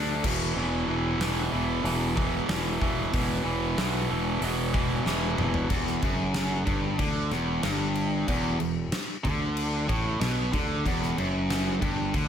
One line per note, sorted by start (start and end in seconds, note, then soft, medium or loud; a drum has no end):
0.00 0.20 D2 loud
0.00 0.22 D3 medium
0.00 0.22 A3 loud
0.00 0.22 D4 loud
0.23 0.52 E1 medium
0.23 0.56 E2 loud
0.23 0.55 B2 loud
0.23 0.57 E3 loud
0.23 kick loud
0.23 crash loud
0.56 0.84 E1 loud
0.56 0.88 E2 loud
0.56 0.88 B2 loud
0.56 0.89 E3 loud
0.88 1.16 E1 medium
0.88 1.20 E2 medium
0.88 1.20 B2 medium
0.88 1.21 E3 loud
1.19 1.48 E1 medium
1.19 1.52 E2 loud
1.19 1.51 B2 loud
1.19 1.52 E3 loud
1.19 snare loud
1.19 open hi-hat medium
1.52 1.81 E1 medium
1.52 1.83 E2 loud
1.52 1.83 B2 loud
1.52 1.85 E3 loud
1.84 2.41 E1 loud
1.84 2.16 E2 loud
1.84 2.16 B2 loud
1.84 2.17 E3 loud
1.84 open hi-hat medium
2.17 2.49 E2 medium
2.17 2.48 B2 medium
2.17 2.49 E3 loud
2.17 kick medium
2.49 2.77 E1 medium
2.49 2.81 E2 loud
2.49 2.81 B2 loud
2.49 2.82 E3 loud
2.49 snare loud
2.49 open hi-hat medium
2.81 3.10 E1 medium
2.81 3.12 E2 medium
2.81 3.12 B2 medium
2.81 3.13 E3 loud
2.81 kick medium
3.13 3.42 E1 medium
3.13 3.43 E2 loud
3.13 3.44 B2 loud
3.13 3.44 E3 loud
3.13 kick loud
3.13 open hi-hat medium
3.44 3.74 E1 medium
3.44 3.76 E2 medium
3.44 3.77 B2 medium
3.44 3.77 E3 loud
3.77 4.06 B1 loud
3.77 4.09 E2 loud
3.77 4.09 B2 loud
3.77 4.10 E3 loud
3.77 snare loud
3.77 open hi-hat medium
4.10 4.39 E1 medium
4.10 4.40 E2 loud
4.10 4.41 B2 medium
4.10 4.42 E3 medium
4.41 4.98 E1 medium
4.41 4.73 E2 loud
4.41 4.73 B2 loud
4.41 4.74 E3 loud
4.41 open hi-hat medium
4.74 5.04 E2 medium
4.74 5.05 B2 loud
4.74 5.06 E3 medium
4.74 kick medium
5.05 5.35 E1 medium
5.05 5.36 E2 loud
5.05 5.37 B2 loud
5.05 5.38 E3 loud
5.05 snare medium
5.38 5.67 E1 medium
5.38 5.68 E2 medium
5.38 5.69 B2 medium
5.38 5.69 E3 medium
5.38 mid tom loud
5.54 floor tom loud
5.70 6.00 E1 medium
5.70 6.02 E2 loud
5.70 kick medium
5.70 crash medium
5.87 snare soft
6.02 6.63 F#1 medium
6.02 6.65 F#2 medium
6.02 kick loud
6.02 crash medium
6.34 snare medium
6.34 crash medium
6.65 6.97 G1 medium
6.65 6.98 G2 loud
6.65 kick loud
6.65 crash medium
6.98 7.29 D2 medium
6.98 7.30 D3 loud
6.98 kick loud
6.98 crash medium
7.31 7.61 E1 medium
7.31 7.63 E2 medium
7.31 snare soft
7.31 crash soft
7.63 8.24 G1 medium
7.63 8.27 G2 loud
7.63 snare loud
7.63 crash medium
7.95 crash medium
8.28 8.58 E1 medium
8.28 8.59 E2 loud
8.28 kick medium
8.28 crash medium
8.60 8.90 E1 medium
8.60 8.86 E2 medium
8.60 crash medium
8.92 snare loud
8.92 crash medium
9.24 9.85 D2 medium
9.24 9.88 D3 loud
9.24 kick medium
9.24 crash medium
9.57 crash medium
9.88 10.19 A1 loud
9.88 10.20 A2 loud
9.88 kick loud
9.88 crash medium
10.20 10.51 B1 loud
10.20 10.52 B2 loud
10.20 snare loud
10.20 crash medium
10.53 10.83 D2 medium
10.53 10.84 D3 loud
10.53 kick loud
10.53 crash medium
10.85 11.15 E1 medium
10.85 11.17 E2 loud
10.85 kick medium
10.85 crash medium
11.02 snare soft
11.18 11.78 F#1 medium
11.18 11.81 F#2 loud
11.18 crash medium
11.50 snare medium
11.50 crash medium
11.81 12.12 G1 loud
11.81 12.13 G2 loud
11.81 kick medium
11.81 crash medium
12.14 12.28 D2 loud
12.14 12.28 D3 loud
12.14 kick loud
12.14 crash medium